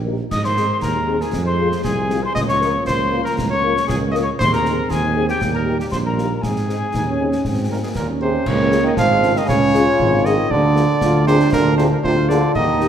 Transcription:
Already playing: tuba A#1
0.06 french horn section D#4 G4 A#4
0.31 tuba G#2, trombone section D#3 G#3, cornet D#5, piccolo D#6, concert bass drum, snare, crash
0.44 cornet C5, piccolo C6, snare
0.57 french horn section C4 D#4 G#4, snare
0.82 tuba D#2, cornet A#4, piccolo A#5, concert bass drum, snare
1.08 french horn section C4 D#4 G#4
1.21 cornet G#4, piccolo G#5, snare
1.33 tuba F2, trombone section F3, concert bass drum, snare
1.46 cornet C5, piccolo C6
1.59 french horn section C4 F4 G#4
1.72 snare
1.84 tuba C2, cornet G#4, piccolo G#5, concert bass drum, snare
2.10 french horn section C4 F4 G#4, snare
2.23 cornet C5, piccolo C6
2.35 tuba C#2, trombone section F3 A#3, cornet D#5, piccolo D#6, concert bass drum, snare
2.48 cornet C#5, piccolo C#6, snare
2.61 french horn section A#3 F4 A#4, snare
2.85 tuba C#2, cornet C5, piccolo C6, concert bass drum, snare
3.12 french horn section A#3 F4 A#4
3.24 cornet A#4, piccolo A#5, snare
3.36 tuba C#2, concert bass drum, snare
3.50 cornet C#5, piccolo C#6
3.62 french horn section A#3 F4 A#4
3.77 snare
3.87 tuba C#2, cornet G#4, piccolo G#5, concert bass drum, snare
4.11 french horn section A#3 F4 A#4, cornet D#5, piccolo D#6, snare
4.21 cornet C#5, piccolo C#6
4.38 tuba D#2, trombone section G#3 C4, cornet C5, piccolo C6, concert bass drum, snare, crash
4.52 cornet A#4, piccolo A#5, snare
4.64 french horn section C4 D#4 G#4, snare
4.89 tuba D#2, cornet G#4, piccolo G#5, concert bass drum, snare
5.16 french horn section C4 D#4 G#4
5.29 cornet G4, piccolo G5, snare
5.41 tuba D#2, trombone section G3 A#3, concert bass drum, snare
5.54 cornet A#4, piccolo A#5
5.66 french horn section A#3 D#4 G4
5.79 cornet G4, piccolo G5, snare
5.91 tuba A#1, cornet C5, piccolo C6, concert bass drum, snare
6.06 cornet A#4, piccolo A#5
6.18 french horn section A#3 D#4 G4, snare
6.42 tuba G#2, trombone section G#3 C4, cornet G#4, piccolo G#5, concert bass drum, snare
6.56 snare
6.68 french horn section C4 D#4 G#4, snare
6.93 tuba D#2, trombone section D#4, concert bass drum, snare
7.06 trombone section C#4
7.20 french horn section C4 D#4 G#4
7.32 snare
7.45 tuba G#2, trombone section C4, concert bass drum, snare
7.70 euphonium A#2, french horn section C4 D#4 G#4, cornet A#4
7.82 euphonium G#2, trombone section A#3, cornet G#4
7.95 tuba D#2, euphonium A#2, cornet A#4, concert bass drum, snare
8.08 trombone section C#4
8.21 euphonium C3, french horn section C4 D#4 G#4, cornet C5
8.46 tuba C#2, euphonium C#3, trombone section A#3, cornet C#5, concert bass drum, crash
8.72 french horn section C#4 F4 G#4, snare
8.84 euphonium D#3, cornet D#5
8.97 tuba G#1, euphonium F3, trombone section G#3, cornet F5, concert bass drum, snare
9.23 french horn section C#4 F4 G#4, snare
9.35 euphonium D#3, cornet D#5, snare
9.46 tuba C#2, euphonium C#3, trombone section C#4, cornet C#5, concert bass drum, snare
9.74 french horn section C#4 F4 G#4, trombone section F4, snare
9.99 tuba G#1, concert bass drum
10.23 euphonium D#3, french horn section C#4 F4 G#4, cornet D#5, snare
10.50 tuba D2, euphonium D3, trombone section A#3, cornet D5, concert bass drum
10.75 french horn section A#3 F4 G#4, trombone section D4, snare
11.01 tuba D2, trombone section F4, concert bass drum, snare
11.26 euphonium C3, french horn section A#3 F4 G#4, trombone section D4, cornet C5, snare
11.40 snare
11.52 tuba D2, euphonium A#2, cornet A#4, concert bass drum, snare
11.78 euphonium C3, french horn section A#3 F4 G#4, cornet C5, snare
11.91 euphonium A#2, cornet A#4
12.04 tuba D2, euphonium C3, trombone section F4, cornet C5, concert bass drum
12.29 euphonium D3, french horn section A#3 F4 G#4, cornet D5, snare
12.54 tuba D#2, euphonium D#3, trombone section D#4, cornet D#5, concert bass drum, crash
12.80 french horn section A#3 D#4 G4, snare

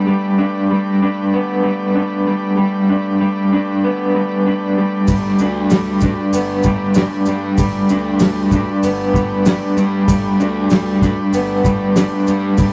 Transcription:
Already playing: transistor combo organ A3 G4 B4 D5, clean electric guitar B3 D4
0.07 clean electric guitar G3
0.38 clean electric guitar D4
0.71 clean electric guitar G3
1.02 clean electric guitar D4
1.34 clean electric guitar B3
1.64 clean electric guitar G3
1.95 clean electric guitar D4
2.27 clean electric guitar G3
2.57 clean electric guitar G3
2.90 clean electric guitar D4
3.21 clean electric guitar G3
3.53 clean electric guitar D4
3.84 clean electric guitar B3
4.15 clean electric guitar G3
4.46 clean electric guitar D4
4.78 clean electric guitar G3
5.08 picked electric bass G1, clean electric guitar G3, kick, open hi-hat, maracas
5.39 picked electric bass D2, clean electric guitar D4, maracas
5.70 clean electric guitar G3, snare, open hi-hat, maracas
6.00 clean electric guitar D4, kick, snare, maracas
6.33 picked electric bass G1, clean electric guitar B3, open hi-hat, maracas
6.63 clean electric guitar G3, kick, maracas
6.94 clean electric guitar D4, snare, open hi-hat, maracas
7.25 picked electric bass G2, clean electric guitar G3, maracas
7.58 picked electric bass G1, clean electric guitar G3, kick, open hi-hat, maracas
7.89 picked electric bass D2, clean electric guitar D4, maracas
8.19 clean electric guitar G3, snare, open hi-hat, maracas
8.51 clean electric guitar D4, kick, maracas
8.83 picked electric bass G1, clean electric guitar B3, open hi-hat, maracas
9.14 clean electric guitar G3, kick, maracas
9.46 clean electric guitar D4, snare, open hi-hat, maracas
9.77 picked electric bass G2, clean electric guitar G3, maracas
10.08 picked electric bass G1, clean electric guitar G3, kick, open hi-hat, maracas
10.40 picked electric bass D2, clean electric guitar D4, maracas
10.70 clean electric guitar G3, snare, open hi-hat, maracas
11.02 clean electric guitar D4, kick, snare, maracas
11.33 picked electric bass G1, clean electric guitar B3, open hi-hat, maracas
11.64 clean electric guitar G3, kick, maracas
11.96 clean electric guitar D4, snare, open hi-hat, maracas
12.27 picked electric bass G2, clean electric guitar G3, maracas
12.58 picked electric bass G1, clean electric guitar G3, kick, open hi-hat, maracas

